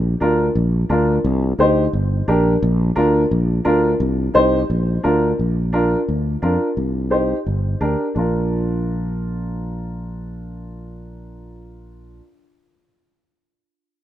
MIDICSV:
0, 0, Header, 1, 3, 480
1, 0, Start_track
1, 0, Key_signature, -2, "major"
1, 0, Tempo, 346220
1, 1725, Time_signature, 4, 2, 24, 8
1, 19458, End_track
2, 0, Start_track
2, 0, Title_t, "Upright piano"
2, 0, Program_c, 0, 0
2, 281, Note_on_c, 0, 62, 76
2, 290, Note_on_c, 0, 65, 72
2, 297, Note_on_c, 0, 70, 88
2, 620, Note_off_c, 0, 62, 0
2, 625, Note_off_c, 0, 65, 0
2, 628, Note_off_c, 0, 70, 0
2, 1239, Note_on_c, 0, 62, 80
2, 1245, Note_on_c, 0, 65, 72
2, 1248, Note_on_c, 0, 70, 83
2, 1578, Note_off_c, 0, 62, 0
2, 1581, Note_off_c, 0, 65, 0
2, 1583, Note_off_c, 0, 70, 0
2, 2199, Note_on_c, 0, 63, 82
2, 2209, Note_on_c, 0, 67, 75
2, 2217, Note_on_c, 0, 72, 87
2, 2536, Note_off_c, 0, 63, 0
2, 2541, Note_off_c, 0, 67, 0
2, 2545, Note_off_c, 0, 72, 0
2, 3158, Note_on_c, 0, 62, 79
2, 3160, Note_on_c, 0, 67, 75
2, 3168, Note_on_c, 0, 70, 86
2, 3494, Note_off_c, 0, 62, 0
2, 3495, Note_off_c, 0, 67, 0
2, 3499, Note_off_c, 0, 70, 0
2, 4097, Note_on_c, 0, 62, 81
2, 4100, Note_on_c, 0, 65, 73
2, 4101, Note_on_c, 0, 70, 94
2, 4441, Note_off_c, 0, 62, 0
2, 4443, Note_off_c, 0, 65, 0
2, 4444, Note_off_c, 0, 70, 0
2, 5055, Note_on_c, 0, 62, 87
2, 5058, Note_on_c, 0, 70, 89
2, 5060, Note_on_c, 0, 65, 76
2, 5399, Note_off_c, 0, 62, 0
2, 5400, Note_off_c, 0, 70, 0
2, 5401, Note_off_c, 0, 65, 0
2, 6013, Note_on_c, 0, 63, 83
2, 6023, Note_on_c, 0, 67, 71
2, 6027, Note_on_c, 0, 72, 96
2, 6356, Note_off_c, 0, 63, 0
2, 6361, Note_off_c, 0, 67, 0
2, 6363, Note_off_c, 0, 72, 0
2, 6979, Note_on_c, 0, 62, 76
2, 6980, Note_on_c, 0, 65, 69
2, 6986, Note_on_c, 0, 70, 86
2, 7318, Note_off_c, 0, 62, 0
2, 7318, Note_off_c, 0, 65, 0
2, 7321, Note_off_c, 0, 70, 0
2, 7939, Note_on_c, 0, 62, 78
2, 7948, Note_on_c, 0, 65, 71
2, 7950, Note_on_c, 0, 70, 85
2, 8277, Note_off_c, 0, 62, 0
2, 8281, Note_off_c, 0, 65, 0
2, 8283, Note_off_c, 0, 70, 0
2, 8901, Note_on_c, 0, 62, 76
2, 8905, Note_on_c, 0, 65, 65
2, 8911, Note_on_c, 0, 70, 77
2, 9238, Note_off_c, 0, 62, 0
2, 9240, Note_off_c, 0, 65, 0
2, 9243, Note_off_c, 0, 70, 0
2, 9845, Note_on_c, 0, 63, 69
2, 9854, Note_on_c, 0, 67, 69
2, 9858, Note_on_c, 0, 72, 80
2, 10190, Note_off_c, 0, 63, 0
2, 10194, Note_off_c, 0, 67, 0
2, 10197, Note_off_c, 0, 72, 0
2, 10821, Note_on_c, 0, 62, 75
2, 10823, Note_on_c, 0, 67, 63
2, 10830, Note_on_c, 0, 70, 76
2, 11159, Note_off_c, 0, 62, 0
2, 11160, Note_off_c, 0, 67, 0
2, 11164, Note_off_c, 0, 70, 0
2, 11295, Note_on_c, 0, 62, 64
2, 11321, Note_on_c, 0, 65, 57
2, 11346, Note_on_c, 0, 70, 68
2, 16899, Note_off_c, 0, 62, 0
2, 16925, Note_off_c, 0, 65, 0
2, 16950, Note_off_c, 0, 70, 0
2, 19458, End_track
3, 0, Start_track
3, 0, Title_t, "Fretless electric bass"
3, 0, Program_c, 1, 35
3, 0, Note_on_c, 1, 34, 107
3, 195, Note_off_c, 1, 34, 0
3, 293, Note_on_c, 1, 38, 82
3, 674, Note_off_c, 1, 38, 0
3, 768, Note_on_c, 1, 34, 96
3, 1151, Note_off_c, 1, 34, 0
3, 1245, Note_on_c, 1, 38, 87
3, 1629, Note_off_c, 1, 38, 0
3, 1726, Note_on_c, 1, 36, 105
3, 2108, Note_off_c, 1, 36, 0
3, 2199, Note_on_c, 1, 38, 83
3, 2584, Note_off_c, 1, 38, 0
3, 2679, Note_on_c, 1, 31, 89
3, 3063, Note_off_c, 1, 31, 0
3, 3159, Note_on_c, 1, 34, 84
3, 3542, Note_off_c, 1, 34, 0
3, 3639, Note_on_c, 1, 34, 110
3, 4021, Note_off_c, 1, 34, 0
3, 4115, Note_on_c, 1, 38, 90
3, 4498, Note_off_c, 1, 38, 0
3, 4593, Note_on_c, 1, 34, 99
3, 4976, Note_off_c, 1, 34, 0
3, 5071, Note_on_c, 1, 38, 92
3, 5455, Note_off_c, 1, 38, 0
3, 5547, Note_on_c, 1, 36, 106
3, 5931, Note_off_c, 1, 36, 0
3, 6034, Note_on_c, 1, 36, 86
3, 6415, Note_off_c, 1, 36, 0
3, 6512, Note_on_c, 1, 34, 96
3, 6893, Note_off_c, 1, 34, 0
3, 7000, Note_on_c, 1, 38, 81
3, 7377, Note_off_c, 1, 38, 0
3, 7477, Note_on_c, 1, 34, 86
3, 8239, Note_off_c, 1, 34, 0
3, 8435, Note_on_c, 1, 38, 81
3, 8814, Note_off_c, 1, 38, 0
3, 8909, Note_on_c, 1, 41, 89
3, 9098, Note_off_c, 1, 41, 0
3, 9386, Note_on_c, 1, 36, 88
3, 10153, Note_off_c, 1, 36, 0
3, 10349, Note_on_c, 1, 31, 82
3, 10731, Note_off_c, 1, 31, 0
3, 10824, Note_on_c, 1, 38, 91
3, 11016, Note_off_c, 1, 38, 0
3, 11309, Note_on_c, 1, 34, 81
3, 16913, Note_off_c, 1, 34, 0
3, 19458, End_track
0, 0, End_of_file